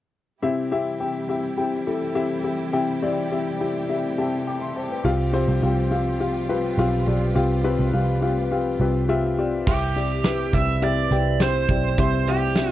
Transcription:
0.42 upright piano C3 C4 E4 G4 E5, string section C3 E3 G3 E4 G4
0.71 upright piano C4 E4 G4 E5
1.00 upright piano C4 E4 G4 G5
1.29 upright piano C4 E4 G4 E5
1.57 upright piano C4 E4 G4 G5
1.87 upright piano C4 E4 G4 A4
2.15 upright piano C4 E4 G4 E5
2.44 upright piano C4 E4 G4 E5
2.73 upright piano C3 C4 E4 G4 G5
3.02 upright piano C4 E4 G4 D5
3.31 upright piano C4 E4 G4 E5
3.61 upright piano C4 E4 G4 G5
3.89 upright piano C4 E4 G4 E5
4.18 upright piano C4 E4 G4 E5 A5
4.47 upright piano G5 D6
4.61 upright piano E5 C6
4.76 upright piano C5 A5
4.90 upright piano B4 G5
5.04 picked electric bass C2, upright piano C3 C4 F4 G4 F5, string section F3 G3 F4
5.33 upright piano C4 F4 G4 C5
5.48 picked electric bass C2
5.62 picked electric bass C2, upright piano C4 F4 G4 F5
5.91 upright piano C4 F4 G4 F5
6.20 upright piano C4 F4 G4 F5
6.49 upright piano C4 F4 G4 B4
6.78 picked electric bass B1, upright piano C4 F4 G4 F5
7.07 picked electric bass B1, upright piano C4 F4 G4 D5
7.35 picked electric bass C2, upright piano C3 C4 F4 G4 F5
7.64 upright piano C4 F4 G4 B4
7.79 picked electric bass C2
7.93 picked electric bass C2, upright piano C4 F4 G4 F5
8.22 upright piano C4 F4 G4 F5
8.51 upright piano C4 F4 G4 F5
8.80 picked electric bass C2, upright piano C4 F4 G4 B4
9.09 upright piano C4 F4 G4 E5
9.38 upright piano C4 F4 G4 D5
9.67 picked electric bass C2, upright piano C3 C4 E4 G4 E5, lead electric guitar G4, kick, crash
9.96 upright piano C4 E4 G4 D5, closed hi-hat
10.24 upright piano C4 E4 G4 B4, snare, closed hi-hat
10.53 picked electric bass C2, upright piano C4 E4 G4 E5, lead electric guitar E5, kick, closed hi-hat
10.82 upright piano C4 E4 G4 E5, lead electric guitar D5, closed hi-hat
11.11 picked electric bass C2, upright piano C4 E4 G4 G5, closed hi-hat
11.40 upright piano C4 E4 G4 C5, lead electric guitar C5, snare, closed hi-hat
11.69 picked electric bass B1, upright piano C4 E4 G4 D5, kick, closed hi-hat
11.98 picked electric bass C2, upright piano C3 C4 E4 G4 E5, lead electric guitar C5, kick, closed hi-hat
12.27 upright piano C4 E4 G4 E5, lead electric guitar G4, closed hi-hat
12.56 upright piano C4 E4 G4 E5, snare, closed hi-hat
12.70 lead electric guitar F4

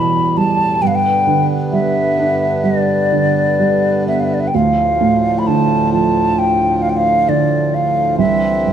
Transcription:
Already playing: harmonium E2 A2 G3, felt piano E2 B2 E3 B3, flute B5
0.37 felt piano G3, flute A5
0.81 harmonium G2 D3 B3, felt piano G2, flute G5
0.87 flute F5
0.95 flute G5
1.27 felt piano D3
1.72 felt piano G3, flute E5
2.19 felt piano D4
2.64 felt piano G3, flute D5
3.12 felt piano D3
3.60 felt piano G3
4.07 felt piano B3, flute E5
4.19 flute F5
4.24 flute E5
4.34 flute D5
4.40 flute E5
4.47 flute G5
4.53 harmonium D2 A2 F3, felt piano D2, flute F5
5.01 felt piano A2
5.38 flute B5
5.47 felt piano D3, flute A5
5.92 felt piano F3, flute A5
6.38 flute G5
6.82 flute F5
6.89 flute G5
6.96 flute F5
7.29 felt piano D3, flute D5
7.74 flute F5
8.16 felt piano C2, harmonium D3 E3 C4, flute E5
8.66 felt piano G2

